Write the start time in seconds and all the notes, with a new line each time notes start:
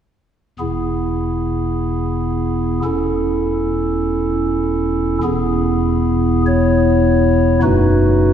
0.59 E1 E2 B3 E4 G#4
2.84 E1 E2 C#4 E4 A4
5.23 E1 E2 B3 E4 G#4
6.46 C#5
7.62 F#1 F#2 A3 D#4 F#4 B4